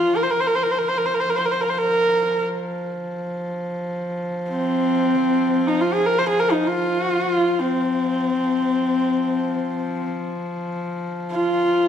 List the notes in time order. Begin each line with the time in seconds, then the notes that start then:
Already playing: F3 F4
0.17 A#4
0.23 C5
0.31 A#4
0.41 C5
0.47 A#4
0.55 C5
0.63 A#4
0.71 C5
0.79 A#4
0.88 C5
0.98 A#4
1.06 C5
1.14 A#4
1.20 C5
1.28 F3 A#4
1.36 C5
1.45 A#4
1.51 C5
1.61 A#4
1.70 C5
1.78 A#4
4.49 C4
5.67 D#4
5.81 F4
5.94 G#4
6.06 A#4
6.18 C5
6.29 G#4
6.40 A#4
6.52 D#4
6.67 F4
7.60 C4
8.43 F3
11.31 F4